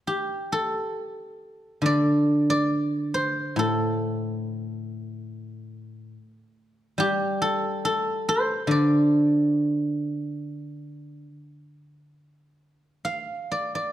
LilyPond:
<<
  \new Staff \with { instrumentName = "Guzheng" } { \time 4/4 \tempo 4 = 70 g'8 a'4. d''8. d''8. c''8 | a'2.~ a'8 r8 | g'8 a'8 a'8 c''8 d''2~ | d''2. f''8 d''16 d''16 | }
  \new Staff \with { instrumentName = "Guzheng" } { \clef bass \time 4/4 r2 d2 | a,2. r4 | g2 d2~ | d4 r2. | }
>>